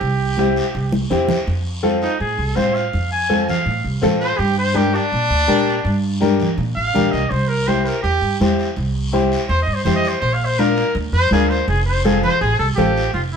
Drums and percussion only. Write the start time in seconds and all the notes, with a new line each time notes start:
0.01 high conga, long guiro
0.37 high conga, short guiro
0.56 short guiro
0.74 high conga, long guiro
0.92 high conga
1.11 low conga, short guiro
1.28 low conga, short guiro
1.47 high conga, long guiro
1.84 high conga, short guiro
2.02 short guiro
2.20 high conga, long guiro
2.56 high conga, short guiro
2.75 short guiro
2.93 high conga, long guiro
3.31 high conga, short guiro
3.49 low conga, short guiro
3.67 high conga, long guiro
4.03 high conga, low conga, short guiro
4.21 short guiro
4.39 high conga, long guiro
4.75 high conga, short guiro
4.94 short guiro
5.13 high conga, long guiro
5.48 high conga, short guiro
5.66 short guiro
5.85 high conga, long guiro
6.22 high conga, short guiro
6.40 low conga, short guiro
6.59 high conga, long guiro
6.95 high conga, low conga, short guiro
7.13 short guiro
7.32 high conga, long guiro
7.67 high conga, short guiro
7.86 short guiro
8.04 high conga, long guiro
8.41 high conga, short guiro
8.59 short guiro
8.76 high conga, long guiro
9.14 high conga, short guiro
9.32 short guiro
9.49 high conga, long guiro
9.85 high conga, low conga, short guiro
10.04 short guiro
10.22 high conga, long guiro
10.59 high conga, short guiro
10.76 short guiro
10.95 high conga, long guiro
11.31 high conga, short guiro
11.50 short guiro
11.68 high conga, long guiro
12.05 high conga, short guiro
12.23 low conga, short guiro
12.41 high conga, long guiro
12.78 high conga, low conga, short guiro
12.97 short guiro
13.14 high conga, long guiro